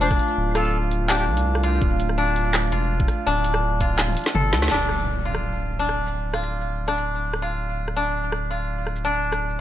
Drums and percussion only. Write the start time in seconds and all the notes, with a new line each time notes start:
0.11 kick, cross-stick
0.19 closed hi-hat
0.55 cross-stick, closed hi-hat
0.91 closed hi-hat
1.09 cross-stick, clap
1.37 closed hi-hat
1.55 cross-stick
1.63 closed hi-hat
1.82 kick
2.00 closed hi-hat
2.09 cross-stick
2.36 closed hi-hat
2.54 cross-stick, clap
2.72 closed hi-hat
3.00 kick
3.08 cross-stick, closed hi-hat
3.44 closed hi-hat
3.54 cross-stick
3.81 kick, closed hi-hat
3.98 snare, clap
4.08 closed hi-hat, high tom
4.10 closed hi-hat
4.12 closed hi-hat
4.15 closed hi-hat
4.17 closed hi-hat
4.19 closed hi-hat
4.21 closed hi-hat
4.24 snare, closed hi-hat
4.35 mid tom
4.53 snare, closed hi-hat
4.62 snare
4.68 snare
4.74 snare
4.89 cross-stick
5.35 cross-stick
5.89 cross-stick
6.07 shaker
6.34 cross-stick
6.43 shaker
6.62 shaker
6.88 cross-stick
6.98 shaker
7.33 cross-stick
7.88 cross-stick
8.32 cross-stick
8.87 cross-stick
8.96 shaker
9.32 cross-stick, shaker
9.51 shaker